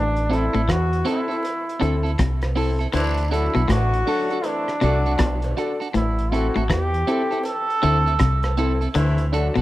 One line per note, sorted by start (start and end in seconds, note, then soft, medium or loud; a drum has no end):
0.00 0.48 A1 loud
0.00 0.16 A2 medium
0.00 0.36 D4 loud
0.16 closed hi-hat medium
0.30 0.45 C4 medium
0.30 0.49 C4 medium
0.30 0.45 E4 medium
0.30 0.49 E4 medium
0.30 0.45 A4 medium
0.30 0.50 A4 loud
0.30 closed hi-hat medium
0.35 0.73 E4 loud
0.53 0.67 A1 medium
0.53 0.63 A2 medium
0.53 0.61 C4 medium
0.53 0.61 E4 medium
0.53 0.61 A4 medium
0.53 closed hi-hat soft
0.68 1.02 E2 medium
0.68 0.91 E3 medium
0.68 1.08 F#4 loud
0.68 kick loud
0.68 cross-stick loud
0.68 closed hi-hat loud
0.68 cowbell medium
0.93 closed hi-hat medium
1.05 1.20 C4 loud
1.05 1.24 C4 medium
1.05 1.20 E4 medium
1.05 1.25 E4 medium
1.05 1.21 A4 loud
1.05 1.25 A4 loud
1.05 closed hi-hat medium
1.11 2.17 E4 loud
1.28 1.40 C4 medium
1.28 1.36 C4 soft
1.28 1.36 E4 medium
1.28 1.41 E4 medium
1.28 1.36 A4 medium
1.28 1.41 A4 medium
1.28 closed hi-hat soft
1.43 closed hi-hat medium
1.43 cowbell medium
1.69 closed hi-hat medium
1.80 2.15 D2 medium
1.80 2.04 D3 medium
1.80 1.95 C4 medium
1.80 1.99 C4 medium
1.80 1.95 E4 medium
1.80 2.00 E4 medium
1.80 1.95 A4 medium
1.80 2.00 A4 loud
1.80 closed hi-hat medium
2.03 2.12 C4 medium
2.03 2.11 E4 medium
2.03 2.11 A4 medium
2.03 closed hi-hat soft
2.19 2.86 C2 medium
2.19 2.42 C3 medium
2.19 kick loud
2.19 cross-stick loud
2.19 closed hi-hat loud
2.42 cross-stick medium
2.42 closed hi-hat soft
2.42 cowbell medium
2.56 2.75 C4 loud
2.56 2.70 C4 loud
2.56 2.75 E4 medium
2.56 2.71 E4 medium
2.56 2.75 A4 loud
2.56 2.71 A4 medium
2.56 open hi-hat medium
2.79 2.87 C4 medium
2.79 2.87 E4 medium
2.79 2.86 A4 medium
2.79 closed hi-hat soft
2.93 3.48 D2 loud
2.93 3.16 D3 medium
2.93 3.24 E3 loud
2.93 3.24 A3 loud
2.93 3.24 C4 loud
2.93 3.33 D4 medium
2.93 3.24 E4 loud
2.93 closed hi-hat medium
2.93 cowbell medium
2.93 vibraslap medium
3.17 closed hi-hat medium
3.31 3.61 D3 medium
3.31 3.62 F#3 medium
3.31 3.61 A3 medium
3.31 3.50 D4 medium
3.31 3.61 D4 medium
3.31 3.46 D4 medium
3.31 3.71 E4 medium
3.31 3.50 F#4 medium
3.31 3.46 F#4 medium
3.31 3.50 A4 loud
3.31 3.46 A4 medium
3.31 closed hi-hat medium
3.55 3.68 B1 medium
3.55 3.63 B2 medium
3.55 3.62 D4 medium
3.55 3.62 F#4 medium
3.55 3.62 A4 medium
3.55 closed hi-hat soft
3.68 4.03 A1 loud
3.68 3.91 A2 medium
3.68 3.99 F#3 medium
3.68 3.99 A3 medium
3.68 3.99 D4 medium
3.68 3.99 F#4 loud
3.68 4.48 F#4 loud
3.68 kick loud
3.68 cross-stick loud
3.68 closed hi-hat loud
3.68 cowbell medium
3.94 closed hi-hat medium
4.06 4.37 D3 loud
4.06 4.37 F#3 loud
4.06 4.37 A3 medium
4.06 4.25 D4 medium
4.06 4.37 D4 loud
4.06 4.21 D4 medium
4.06 4.25 F#4 medium
4.06 4.22 F#4 medium
4.06 4.25 A4 loud
4.06 4.22 A4 medium
4.06 open hi-hat medium
4.29 4.38 D4 medium
4.29 4.41 F#4 medium
4.29 4.38 F#4 medium
4.29 4.41 A4 medium
4.29 4.37 A4 medium
4.29 closed hi-hat soft
4.43 4.74 E3 medium
4.43 4.74 A3 medium
4.43 4.74 C4 medium
4.43 5.58 D4 medium
4.43 4.74 E4 medium
4.43 closed hi-hat medium
4.43 cowbell medium
4.68 cross-stick medium
4.68 closed hi-hat medium
4.81 5.16 C2 medium
4.81 5.04 C3 medium
4.81 5.53 F#3 medium
4.81 5.53 A3 medium
4.81 5.00 D4 medium
4.81 5.53 D4 medium
4.81 4.96 D4 medium
4.81 5.00 F#4 medium
4.81 5.53 F#4 medium
4.81 4.97 F#4 loud
4.81 5.01 A4 medium
4.81 4.97 A4 loud
4.81 closed hi-hat medium
5.06 5.13 D4 medium
5.06 5.13 F#4 medium
5.06 5.12 A4 medium
5.06 closed hi-hat soft
5.18 5.53 B1 medium
5.18 5.42 B2 medium
5.18 kick loud
5.18 cross-stick loud
5.18 closed hi-hat loud
5.42 closed hi-hat medium
5.42 cowbell medium
5.56 5.75 D4 loud
5.56 5.71 D4 medium
5.56 5.76 F#4 medium
5.56 5.72 F#4 medium
5.56 5.76 A4 loud
5.56 5.72 A4 loud
5.56 closed hi-hat medium
5.80 5.88 D4 medium
5.80 5.88 F#4 medium
5.80 5.87 A4 medium
5.80 closed hi-hat soft
5.94 6.49 A1 loud
5.94 6.17 A2 medium
5.94 6.34 E4 medium
5.94 closed hi-hat medium
5.94 cowbell medium
6.19 closed hi-hat soft
6.32 6.50 C4 medium
6.32 6.46 C4 medium
6.32 6.51 E4 medium
6.32 6.47 E4 medium
6.32 6.70 F#4 medium
6.32 6.51 A4 loud
6.32 6.47 A4 medium
6.32 closed hi-hat medium
6.56 6.69 A1 loud
6.56 6.64 A2 medium
6.56 6.63 C4 medium
6.56 6.63 E4 medium
6.56 6.62 A4 medium
6.56 closed hi-hat soft
6.70 7.03 E2 medium
6.70 6.92 E3 medium
6.70 7.41 G4 loud
6.70 kick loud
6.70 cross-stick loud
6.70 closed hi-hat loud
6.70 cowbell medium
6.94 closed hi-hat medium
7.07 7.26 C4 medium
7.07 7.22 C4 medium
7.07 7.26 E4 medium
7.07 7.22 E4 medium
7.07 7.22 A4 medium
7.07 7.26 A4 loud
7.07 closed hi-hat medium
7.31 7.42 C4 medium
7.31 7.38 C4 soft
7.31 7.42 E4 medium
7.31 7.38 E4 medium
7.31 7.37 A4 medium
7.31 7.42 A4 medium
7.31 closed hi-hat soft
7.43 8.54 A4 loud
7.43 closed hi-hat loud
7.43 cowbell medium
7.70 closed hi-hat soft
7.82 8.16 D2 medium
7.82 8.05 D3 medium
7.82 8.01 C4 loud
7.82 7.97 C4 medium
7.82 8.01 E4 medium
7.82 7.97 E4 medium
7.82 8.01 A4 loud
7.82 7.97 A4 loud
7.82 closed hi-hat medium
8.06 8.13 C4 medium
8.06 8.13 E4 medium
8.06 8.13 A4 medium
8.06 closed hi-hat soft
8.19 8.87 C2 medium
8.19 8.43 C3 medium
8.19 kick loud
8.19 cross-stick loud
8.19 closed hi-hat loud
8.43 cross-stick medium
8.43 closed hi-hat soft
8.43 cowbell medium
8.57 8.72 C4 medium
8.57 8.76 C4 loud
8.57 8.76 E4 medium
8.57 8.72 E4 loud
8.57 8.77 A4 loud
8.57 8.72 A4 loud
8.57 closed hi-hat medium
8.81 8.88 C4 medium
8.81 8.88 E4 medium
8.81 8.88 A4 medium
8.81 closed hi-hat soft
8.94 9.49 D2 loud
8.94 9.18 D3 loud
8.94 9.25 E3 loud
8.94 9.25 A3 loud
8.94 9.25 C4 loud
8.94 9.25 E4 loud
8.94 closed hi-hat medium
8.94 cowbell medium
9.18 closed hi-hat medium
9.32 9.62 D3 medium
9.32 9.62 F#3 medium
9.32 9.62 A3 medium
9.32 9.51 D4 loud
9.32 9.62 D4 medium
9.32 9.47 D4 medium
9.32 9.51 F#4 medium
9.32 9.47 F#4 medium
9.32 9.51 A4 loud
9.32 9.47 A4 loud
9.32 closed hi-hat medium
9.55 9.62 B1 loud
9.55 9.62 B2 medium
9.55 9.62 D4 medium
9.55 9.62 F#4 medium
9.55 9.62 A4 medium
9.55 closed hi-hat soft